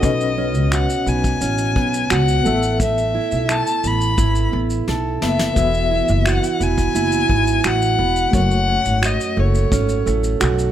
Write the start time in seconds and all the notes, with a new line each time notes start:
Already playing: A3 C#4 F#4 D#5
0.01 B1 B2 C#4 B4 D#5, kick, shaker
0.21 shaker
0.37 C#4
0.54 C#2, shaker
0.72 F#4 F#5, finger snap, shaker
0.90 shaker
1.06 B1 B3 G#5, shaker
1.24 kick, shaker
1.41 A1 C#4, shaker
1.58 shaker
1.76 B1 B3, kick
1.94 shaker
2.10 C#2 F#4 F#5, finger snap, shaker
2.28 shaker
2.43 A1 A3 B3 A4 E5, shaker
2.63 shaker
2.80 A3 E5, kick, shaker
2.98 shaker
3.14 E4
3.31 B1, shaker
3.48 A4 A5, finger snap, shaker
3.67 shaker
3.84 A1 B3 B5, shaker
4.01 shaker
4.18 G#1 E4, kick, shaker
4.35 shaker
4.52 A1 B3
4.70 shaker
4.88 B1 A4, snare
5.21 F#1 B3 A4 E5, snare
5.39 snare
5.54 E1 E3 B3 F#4, kick, shaker
5.58 E5
5.74 shaker
5.91 E4
6.08 F#1, shaker
6.26 F#4 F#5, finger snap, shaker
6.44 shaker
6.60 E1 B3 G#5, shaker
6.78 kick, shaker
6.95 F#1 E4, shaker
7.12 shaker
7.29 G#1 B3, kick
7.47 shaker
7.64 A1 F#4 F#5, finger snap, shaker
7.82 shaker
7.98 E1 B3
8.16 shaker
8.31 F#1 F#2 A3 F#4 C#5, kick, shaker
8.36 F#5
8.51 shaker
8.68 C#4
8.85 G#1, shaker
9.02 F#4 D#5, finger snap, shaker
9.21 shaker
9.36 F#1 A3 C#5
9.55 shaker
9.72 G#1 C#4, kick, shaker
9.89 shaker
10.06 A1 A3, shaker
10.24 shaker
10.40 B1 F#4, finger snap, shaker
10.59 shaker